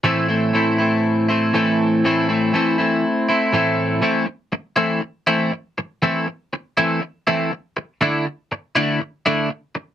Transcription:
X:1
M:4/4
L:1/8
Q:1/4=121
K:Am
V:1 name="Clean electric guitar"
[A,,E,A,CE] [A,CE] [E,A,CE] [A,CE]2 [A,CE] [A,,E,A,CE]2 | [A,,E,A,CE] [A,CE] [E,A,CE] [A,CE]2 [A,CE] [A,,E,A,CE]2 | [E,A,CE] z2 [E,A,CE] z [E,A,CE] z2 | [E,A,CE] z2 [E,A,CE] z [E,A,CE] z2 |
[D,A,DE] z2 [D,A,DE] z [D,A,DE] z2 |]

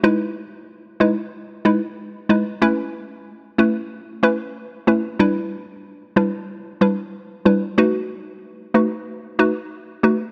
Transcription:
X:1
M:4/4
L:1/8
Q:1/4=93
K:Alyd
V:1 name="Synth pluck"
[G,DEB]2 z [G,DEB] z [G,DEB] z [G,DEB] | [A,CEB]2 z [A,CEB] z [A,CEB] z [A,CEB] | [=G,=DEB]2 z [G,DEB] z [G,DEB] z [G,DEB] | [A,DFB]2 z [A,DFB] z [A,DFB] z [A,DFB] |]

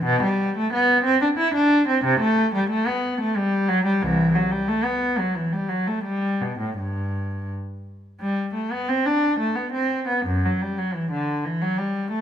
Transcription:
X:1
M:3/4
L:1/16
Q:1/4=90
K:G
V:1 name="Cello" clef=bass
B,, G,2 A, B,2 C D E D2 C | C, A,2 G, A, B,2 A, G,2 F, G, | [C,,E,]2 F, G, A, B,2 F, E, G, F, A, | G,2 B,, A,, G,,4 z4 |
G,2 A, B, C D2 A, B, C2 B, | F,, F, G, F, E, D,2 E, F, G,2 A, |]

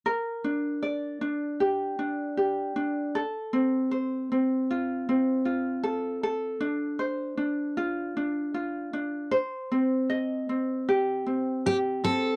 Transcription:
X:1
M:4/4
L:1/8
Q:1/4=78
K:Gm
V:1 name="Steel-string acoustic guitar"
z8 | z8 | z8 | z6 G A |]
V:2 name="Ukulele"
B D d D G D G D | A C c C F C F A | A D c D F D F D | c C e C G C G C |]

